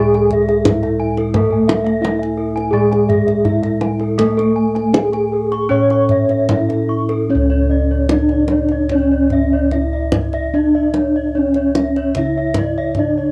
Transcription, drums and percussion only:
0.14 kendang slap
0.31 kendang low
0.48 kendang slap
0.65 kendang high, kendang low
0.83 kendang slap
1.17 kendang slap
1.34 kendang high, kendang low
1.69 kendang high
1.87 kendang slap
2.05 kendang high
2.23 kendang slap
2.57 kendang slap
2.93 kendang slap
3.10 kendang low
3.28 kendang slap
3.45 kendang low
3.63 kendang slap
3.81 kendang high
4.00 kendang slap
4.19 kendang high, kendang low
4.39 kendang slap
4.76 kendang slap
4.94 kendang high
5.13 kendang slap
5.52 kendang slap
5.90 kendang slap
6.09 kendang low
6.29 kendang slap
6.49 kendang high, kendang low
6.70 kendang slap
7.09 kendang slap
8.09 kendang high
8.29 kendang slap
8.48 kendang high
8.69 kendang slap
8.89 kendang slap, kendang low
9.30 kendang slap, kendang low
9.71 kendang slap, kendang low
10.12 kendang high, kendang low
10.33 kendang slap
10.94 kendang high
11.54 kendang slap
11.75 kendang high
11.96 kendang slap
12.15 kendang slap, kendang low
12.54 kendang slap, kendang high, kendang low
12.95 kendang slap, kendang low

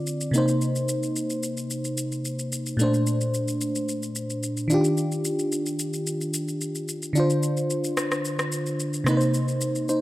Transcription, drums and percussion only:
0.07 shaker
0.21 shaker
0.34 shaker
0.48 shaker
0.61 shaker
0.76 shaker
0.89 shaker
1.03 shaker
1.16 shaker
1.30 shaker
1.43 shaker
1.57 shaker
1.70 shaker
1.85 shaker
1.98 shaker
2.12 shaker
2.25 shaker
2.39 shaker
2.52 shaker
2.66 shaker
2.79 shaker
2.94 shaker
3.07 shaker
3.21 shaker
3.34 shaker
3.48 shaker
3.61 shaker
3.75 shaker
3.89 shaker
4.03 shaker
4.16 shaker
4.30 shaker
4.43 shaker
4.57 shaker
4.70 shaker
4.84 shaker
4.97 shaker
5.12 shaker
5.25 shaker
5.39 shaker
5.52 shaker
5.66 shaker
5.79 shaker
5.93 shaker
6.07 shaker
6.21 shaker
6.34 shaker
6.48 shaker
6.61 shaker
6.75 shaker
6.88 shaker
7.02 shaker
7.16 shaker
7.30 shaker
7.43 shaker
7.57 shaker
7.70 shaker
7.84 shaker
7.97 cross-stick, shaker
8.12 cross-stick, shaker
8.25 shaker
8.39 cross-stick, shaker
8.52 shaker
8.66 shaker
8.80 shaker
8.93 shaker
9.06 cross-stick, shaker
9.21 shaker
9.34 shaker
9.48 shaker
9.61 shaker
9.75 shaker
9.89 shaker

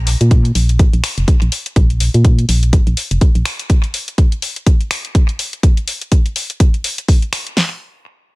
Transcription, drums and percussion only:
0.07 open hi-hat
0.21 closed hi-hat
0.31 kick, closed hi-hat
0.45 closed hi-hat
0.55 open hi-hat
0.69 closed hi-hat
0.79 kick, closed hi-hat
0.93 closed hi-hat
1.04 finger snap, open hi-hat
1.18 closed hi-hat
1.28 kick, closed hi-hat
1.42 closed hi-hat
1.52 open hi-hat
1.66 closed hi-hat
1.76 kick, closed hi-hat
1.90 closed hi-hat
2.00 open hi-hat
2.14 closed hi-hat
2.25 kick, closed hi-hat
2.39 closed hi-hat
2.49 open hi-hat
2.63 closed hi-hat
2.73 kick, closed hi-hat
2.87 closed hi-hat
2.97 open hi-hat
3.11 closed hi-hat
3.21 kick, closed hi-hat
3.35 closed hi-hat
3.45 finger snap, open hi-hat
3.59 closed hi-hat
3.70 kick, closed hi-hat
3.84 closed hi-hat
3.94 open hi-hat
4.08 closed hi-hat
4.18 kick, closed hi-hat
4.32 closed hi-hat
4.42 open hi-hat
4.56 closed hi-hat
4.66 kick, closed hi-hat
4.81 closed hi-hat
4.91 finger snap, open hi-hat
5.05 closed hi-hat
5.15 kick, closed hi-hat
5.29 closed hi-hat
5.39 open hi-hat
5.53 closed hi-hat
5.63 kick, closed hi-hat
5.77 closed hi-hat
5.88 open hi-hat
6.01 closed hi-hat
6.12 kick, closed hi-hat
6.26 closed hi-hat
6.36 open hi-hat
6.50 closed hi-hat
6.60 kick, closed hi-hat
6.74 closed hi-hat
6.84 open hi-hat
6.98 closed hi-hat
7.08 kick, open hi-hat
7.22 closed hi-hat
7.33 finger snap, open hi-hat
7.47 closed hi-hat
7.57 snare, open hi-hat

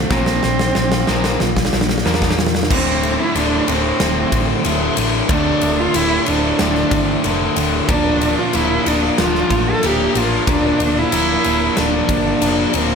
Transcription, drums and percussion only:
0.10 kick, snare
0.26 snare
0.43 snare
0.59 snare
0.75 snare
0.92 snare
1.07 snare
1.24 snare
1.40 snare
1.57 kick, snare
1.65 snare
1.73 snare
1.81 snare
1.89 snare
1.98 snare
2.06 snare
2.14 snare
2.22 kick, snare
2.31 snare
2.39 snare
2.47 snare
2.55 snare
2.63 snare
2.71 kick, crash
3.03 ride
3.35 ride
3.68 ride
4.00 snare, ride
4.32 kick, ride
4.65 ride
4.97 ride
5.29 kick, ride
5.61 ride
5.94 ride
6.26 ride
6.59 snare, ride
6.75 snare
6.91 kick, ride
7.24 ride
7.56 ride
7.89 kick, ride
8.21 ride
8.53 ride
8.86 ride
9.18 snare, ride
9.35 snare
9.50 kick, ride
9.83 ride
10.15 ride
10.47 kick, ride
10.80 ride
11.12 ride
11.44 ride
11.77 snare, ride
12.09 kick, ride
12.42 ride
12.74 ride

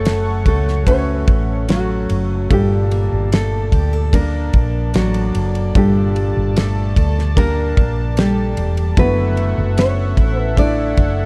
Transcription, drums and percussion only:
0.05 snare, ride
0.46 kick, ride
0.68 snare
0.87 kick, ride
1.28 kick, ride
1.69 snare, ride
2.10 ride
2.51 kick, ride
2.91 ride
3.32 snare, ride
3.72 kick, ride
4.13 kick, ride
4.53 kick, ride
4.94 snare, ride
5.14 ride
5.35 ride
5.55 ride
5.75 kick, ride
6.16 ride
6.56 snare, ride
6.96 kick, ride
7.19 snare
7.37 kick, ride
7.77 kick, ride
8.17 snare, ride
8.57 ride
8.77 ride
8.97 kick, ride
9.37 ride
9.78 snare, ride
10.17 kick, ride
10.57 kick, ride
10.97 kick, ride

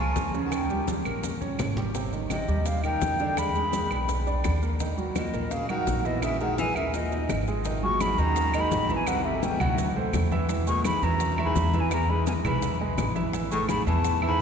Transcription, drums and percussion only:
0.16 high bongo, low bongo, high conga, maracas
0.34 high bongo, high conga, maracas
0.52 high bongo, high conga, claves, maracas
0.70 high bongo, high conga, maracas
0.88 high bongo, high conga, maracas
1.05 high conga, claves, maracas
1.24 high bongo, high conga, maracas
1.42 high bongo, high conga, maracas
1.59 high bongo, low bongo, low conga, claves, maracas
1.77 high bongo, low conga, maracas
1.95 high bongo, high conga, maracas
2.13 high bongo, high conga, maracas
2.30 high bongo, high conga, claves, maracas
2.48 high conga, maracas
2.66 high bongo, high conga, maracas
2.83 high bongo, high conga, claves, maracas
3.02 high bongo, low bongo, high conga, maracas
3.19 high bongo, high conga, maracas
3.37 high bongo, high conga, claves, maracas
3.55 high bongo, high conga, maracas
3.73 high bongo, high conga, maracas
3.91 high conga, claves, maracas
4.09 high bongo, high conga, maracas
4.27 high bongo, high conga, maracas
4.44 high bongo, low bongo, high conga, claves, maracas
4.62 high bongo, maracas
4.80 high bongo, high conga, maracas
4.98 high bongo, high conga, maracas
5.16 high bongo, high conga, claves, maracas
5.34 high conga, maracas
5.51 high bongo, high conga, maracas
5.69 high bongo, high conga, claves, maracas
5.87 high bongo, low bongo, high conga, maracas
6.05 high bongo, high conga, maracas
6.22 high bongo, high conga, claves, maracas
6.40 high bongo, high conga, maracas
6.58 high bongo, high conga, maracas
6.76 high conga, claves, maracas
6.94 high bongo, high conga, maracas
7.12 high bongo, high conga, maracas
7.29 high bongo, low bongo, high conga, claves, maracas
7.47 high bongo, maracas
7.65 high bongo, high conga, maracas
7.83 high bongo, high conga
8.00 high bongo, high conga, claves, maracas
8.18 high conga, maracas
8.36 high bongo, high conga, maracas
8.54 high bongo, high conga, claves, maracas
8.71 high bongo, low bongo, high conga, maracas
8.89 high bongo, high conga, maracas
9.07 high bongo, high conga, claves, maracas
9.25 high bongo, high conga
9.43 high bongo, high conga, maracas
9.60 high conga, low conga, claves, maracas
9.78 high bongo, high conga, maracas
9.96 high bongo, high conga
10.13 high bongo, low bongo, high conga, claves, maracas
10.31 high bongo, high conga, maracas
10.49 high bongo, high conga, maracas
10.67 high bongo, high conga, maracas
10.85 high bongo, high conga, claves, maracas
11.03 high conga, maracas
11.20 high bongo, high conga, maracas
11.38 high bongo, high conga, claves
11.56 high bongo, low bongo, high conga, maracas
11.73 high bongo, high conga, maracas
11.91 high bongo, high conga, claves, maracas
12.09 high bongo, high conga
12.27 high bongo, high conga, maracas
12.45 high conga, low conga, claves, maracas
12.62 high bongo, high conga, maracas
12.80 high bongo, high conga
12.98 high bongo, low bongo, high conga, claves, maracas
13.16 high bongo, high conga, maracas
13.33 high bongo, high conga, maracas
13.51 high bongo, high conga, maracas
13.69 high bongo, high conga, claves, maracas
13.87 high conga, maracas
14.05 high bongo, high conga, maracas
14.22 high bongo, high conga, claves

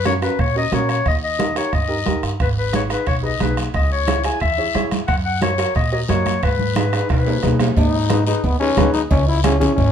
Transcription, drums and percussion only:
0.05 bombo rim, high conga, short guiro
0.22 bombo rim, short guiro
0.39 bombo low, bombo rim, high conga, long guiro
0.72 bombo rim, high conga, short guiro
0.89 bombo rim, short guiro
1.06 bombo low, bombo rim, high conga, long guiro
1.40 bombo rim, high conga, short guiro
1.56 bombo rim, short guiro
1.73 bombo low, bombo rim, high conga, long guiro
2.06 bombo rim, high conga, short guiro
2.23 bombo rim, short guiro
2.40 bombo low, bombo rim, high conga, high timbale, long guiro
2.73 bombo rim, high conga, high timbale, short guiro
2.90 bombo rim, high timbale, short guiro
3.06 bombo low, bombo rim, high conga, high timbale, long guiro
3.40 bombo rim, high conga, high timbale, low timbale, short guiro
3.57 bombo rim, high timbale, short guiro
3.74 bombo low, bombo rim, high conga, high timbale, long guiro
4.07 bombo rim, high conga, high timbale, short guiro
4.24 bombo rim, high timbale, short guiro
4.40 bombo low, bombo rim, high conga, high timbale, long guiro
4.74 bombo rim, high conga, high timbale, short guiro
4.91 bombo rim, high conga, high timbale, short guiro
5.08 bombo low, bombo rim, high conga, high timbale, long guiro
5.41 bombo rim, high conga, high timbale, short guiro
5.58 bombo rim, high timbale, short guiro
5.75 bombo low, bombo rim, high conga, high timbale, long guiro
6.09 bombo rim, high conga, high timbale, low timbale, short guiro
6.26 bombo rim, high conga, high timbale, short guiro
6.43 bombo low, bombo rim, high conga, high timbale, long guiro
6.59 high conga
6.76 bombo rim, high conga, high timbale, short guiro
6.93 bombo rim, high timbale, short guiro
7.09 bombo low, bombo rim, high conga, high timbale, long guiro
7.27 low timbale
7.43 bombo low, bombo rim, high conga, low timbale, short guiro
7.59 bombo rim, high conga, low timbale, short guiro
7.77 bombo low, cowbell, high conga, long guiro
8.10 bombo rim, high conga, short guiro
8.27 short guiro
8.44 bombo low, cowbell, high conga, long guiro
8.77 bombo low, bombo rim, high conga, short guiro
8.94 short guiro
9.11 bombo low, cowbell, high conga, long guiro
9.44 bombo rim, high conga, short guiro
9.61 low conga, short guiro
9.78 bombo low, cowbell, high conga, long guiro

